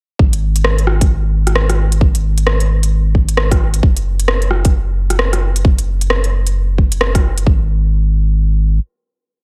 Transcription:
0, 0, Header, 1, 3, 480
1, 0, Start_track
1, 0, Tempo, 454545
1, 204, Time_signature, 4, 2, 24, 8
1, 9960, End_track
2, 0, Start_track
2, 0, Title_t, "Sub bass"
2, 0, Program_c, 0, 38
2, 204, Note_on_c, 0, 32, 84
2, 4025, Note_off_c, 0, 32, 0
2, 4044, Note_on_c, 0, 30, 86
2, 7865, Note_off_c, 0, 30, 0
2, 7882, Note_on_c, 0, 32, 92
2, 9281, Note_off_c, 0, 32, 0
2, 9960, End_track
3, 0, Start_track
3, 0, Title_t, "Drums"
3, 204, Note_on_c, 9, 36, 105
3, 310, Note_off_c, 9, 36, 0
3, 350, Note_on_c, 9, 42, 44
3, 455, Note_off_c, 9, 42, 0
3, 588, Note_on_c, 9, 42, 53
3, 681, Note_on_c, 9, 37, 98
3, 694, Note_off_c, 9, 42, 0
3, 786, Note_off_c, 9, 37, 0
3, 829, Note_on_c, 9, 42, 29
3, 920, Note_on_c, 9, 37, 61
3, 934, Note_off_c, 9, 42, 0
3, 1026, Note_off_c, 9, 37, 0
3, 1070, Note_on_c, 9, 36, 100
3, 1070, Note_on_c, 9, 42, 54
3, 1175, Note_off_c, 9, 36, 0
3, 1175, Note_off_c, 9, 42, 0
3, 1551, Note_on_c, 9, 37, 52
3, 1551, Note_on_c, 9, 42, 56
3, 1642, Note_off_c, 9, 37, 0
3, 1642, Note_on_c, 9, 37, 99
3, 1657, Note_off_c, 9, 42, 0
3, 1748, Note_off_c, 9, 37, 0
3, 1790, Note_on_c, 9, 37, 52
3, 1790, Note_on_c, 9, 42, 44
3, 1896, Note_off_c, 9, 37, 0
3, 1896, Note_off_c, 9, 42, 0
3, 2028, Note_on_c, 9, 42, 57
3, 2124, Note_on_c, 9, 36, 112
3, 2134, Note_off_c, 9, 42, 0
3, 2229, Note_off_c, 9, 36, 0
3, 2269, Note_on_c, 9, 42, 44
3, 2375, Note_off_c, 9, 42, 0
3, 2509, Note_on_c, 9, 42, 56
3, 2604, Note_on_c, 9, 37, 101
3, 2615, Note_off_c, 9, 42, 0
3, 2710, Note_off_c, 9, 37, 0
3, 2749, Note_on_c, 9, 42, 32
3, 2855, Note_off_c, 9, 42, 0
3, 2990, Note_on_c, 9, 42, 57
3, 3096, Note_off_c, 9, 42, 0
3, 3325, Note_on_c, 9, 36, 58
3, 3431, Note_off_c, 9, 36, 0
3, 3470, Note_on_c, 9, 42, 56
3, 3562, Note_on_c, 9, 37, 102
3, 3575, Note_off_c, 9, 42, 0
3, 3668, Note_off_c, 9, 37, 0
3, 3711, Note_on_c, 9, 36, 104
3, 3712, Note_on_c, 9, 37, 52
3, 3712, Note_on_c, 9, 42, 44
3, 3816, Note_off_c, 9, 36, 0
3, 3818, Note_off_c, 9, 37, 0
3, 3818, Note_off_c, 9, 42, 0
3, 3947, Note_on_c, 9, 42, 57
3, 4045, Note_on_c, 9, 36, 113
3, 4052, Note_off_c, 9, 42, 0
3, 4150, Note_off_c, 9, 36, 0
3, 4187, Note_on_c, 9, 42, 43
3, 4293, Note_off_c, 9, 42, 0
3, 4430, Note_on_c, 9, 42, 54
3, 4520, Note_on_c, 9, 37, 107
3, 4536, Note_off_c, 9, 42, 0
3, 4626, Note_off_c, 9, 37, 0
3, 4666, Note_on_c, 9, 42, 30
3, 4759, Note_on_c, 9, 37, 62
3, 4772, Note_off_c, 9, 42, 0
3, 4865, Note_off_c, 9, 37, 0
3, 4908, Note_on_c, 9, 42, 55
3, 4910, Note_on_c, 9, 36, 108
3, 5013, Note_off_c, 9, 42, 0
3, 5015, Note_off_c, 9, 36, 0
3, 5388, Note_on_c, 9, 37, 49
3, 5388, Note_on_c, 9, 42, 53
3, 5480, Note_off_c, 9, 37, 0
3, 5480, Note_on_c, 9, 37, 104
3, 5493, Note_off_c, 9, 42, 0
3, 5586, Note_off_c, 9, 37, 0
3, 5629, Note_on_c, 9, 37, 50
3, 5629, Note_on_c, 9, 42, 46
3, 5734, Note_off_c, 9, 37, 0
3, 5734, Note_off_c, 9, 42, 0
3, 5871, Note_on_c, 9, 42, 58
3, 5963, Note_on_c, 9, 36, 115
3, 5976, Note_off_c, 9, 42, 0
3, 6069, Note_off_c, 9, 36, 0
3, 6109, Note_on_c, 9, 42, 42
3, 6215, Note_off_c, 9, 42, 0
3, 6350, Note_on_c, 9, 42, 52
3, 6443, Note_on_c, 9, 37, 102
3, 6456, Note_off_c, 9, 42, 0
3, 6548, Note_off_c, 9, 37, 0
3, 6589, Note_on_c, 9, 42, 30
3, 6695, Note_off_c, 9, 42, 0
3, 6828, Note_on_c, 9, 42, 52
3, 6934, Note_off_c, 9, 42, 0
3, 7163, Note_on_c, 9, 36, 62
3, 7269, Note_off_c, 9, 36, 0
3, 7305, Note_on_c, 9, 42, 54
3, 7401, Note_on_c, 9, 37, 108
3, 7411, Note_off_c, 9, 42, 0
3, 7506, Note_off_c, 9, 37, 0
3, 7550, Note_on_c, 9, 36, 107
3, 7551, Note_on_c, 9, 37, 48
3, 7551, Note_on_c, 9, 42, 44
3, 7655, Note_off_c, 9, 36, 0
3, 7656, Note_off_c, 9, 37, 0
3, 7656, Note_off_c, 9, 42, 0
3, 7789, Note_on_c, 9, 42, 57
3, 7883, Note_on_c, 9, 36, 103
3, 7894, Note_off_c, 9, 42, 0
3, 7989, Note_off_c, 9, 36, 0
3, 9960, End_track
0, 0, End_of_file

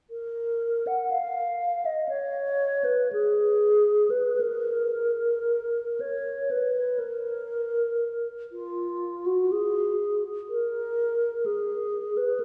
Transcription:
0, 0, Header, 1, 2, 480
1, 0, Start_track
1, 0, Tempo, 1005025
1, 50, Time_signature, 4, 2, 24, 8
1, 1489, Tempo, 1301518
1, 1969, Tempo, 1081081
1, 2449, Tempo, 1005025
1, 4369, Tempo, 967742
1, 5820, End_track
2, 0, Start_track
2, 0, Title_t, "Alto flute"
2, 0, Program_c, 0, 73
2, 49, Note_on_c, 0, 70, 45
2, 415, Note_on_c, 0, 78, 43
2, 423, Note_off_c, 0, 70, 0
2, 529, Note_on_c, 0, 77, 46
2, 536, Note_off_c, 0, 78, 0
2, 886, Note_on_c, 0, 75, 50
2, 893, Note_off_c, 0, 77, 0
2, 994, Note_off_c, 0, 75, 0
2, 997, Note_on_c, 0, 73, 52
2, 1358, Note_on_c, 0, 71, 49
2, 1365, Note_off_c, 0, 73, 0
2, 1487, Note_off_c, 0, 71, 0
2, 1492, Note_on_c, 0, 68, 54
2, 1852, Note_on_c, 0, 71, 45
2, 1858, Note_off_c, 0, 68, 0
2, 1963, Note_on_c, 0, 70, 57
2, 1968, Note_off_c, 0, 71, 0
2, 2690, Note_on_c, 0, 73, 55
2, 2697, Note_off_c, 0, 70, 0
2, 2930, Note_on_c, 0, 71, 45
2, 2938, Note_off_c, 0, 73, 0
2, 3161, Note_on_c, 0, 70, 53
2, 3168, Note_off_c, 0, 71, 0
2, 3776, Note_off_c, 0, 70, 0
2, 3892, Note_on_c, 0, 65, 49
2, 4245, Note_on_c, 0, 66, 49
2, 4252, Note_off_c, 0, 65, 0
2, 4367, Note_on_c, 0, 68, 50
2, 4375, Note_off_c, 0, 66, 0
2, 4724, Note_off_c, 0, 68, 0
2, 4852, Note_on_c, 0, 70, 57
2, 5330, Note_on_c, 0, 68, 56
2, 5338, Note_off_c, 0, 70, 0
2, 5683, Note_on_c, 0, 71, 48
2, 5691, Note_off_c, 0, 68, 0
2, 5798, Note_on_c, 0, 70, 56
2, 5805, Note_off_c, 0, 71, 0
2, 5820, Note_off_c, 0, 70, 0
2, 5820, End_track
0, 0, End_of_file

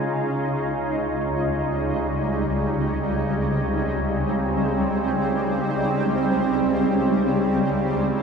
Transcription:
0, 0, Header, 1, 3, 480
1, 0, Start_track
1, 0, Tempo, 500000
1, 7897, End_track
2, 0, Start_track
2, 0, Title_t, "Ambient pad"
2, 0, Program_c, 0, 92
2, 0, Note_on_c, 0, 49, 65
2, 0, Note_on_c, 0, 56, 90
2, 0, Note_on_c, 0, 63, 71
2, 0, Note_on_c, 0, 65, 86
2, 99, Note_off_c, 0, 56, 0
2, 105, Note_off_c, 0, 49, 0
2, 108, Note_on_c, 0, 37, 78
2, 803, Note_on_c, 0, 55, 78
2, 1890, Note_off_c, 0, 65, 0
2, 2621, Note_on_c, 0, 60, 77
2, 7897, Note_off_c, 0, 37, 0
2, 7897, Note_off_c, 0, 55, 0
2, 7897, Note_off_c, 0, 60, 0
2, 7897, Note_off_c, 0, 63, 0
2, 7897, End_track
3, 0, Start_track
3, 0, Title_t, "Synth drone"
3, 0, Program_c, 1, 95
3, 0, Note_on_c, 1, 49, 70
3, 7897, Note_off_c, 1, 49, 0
3, 7897, End_track
0, 0, End_of_file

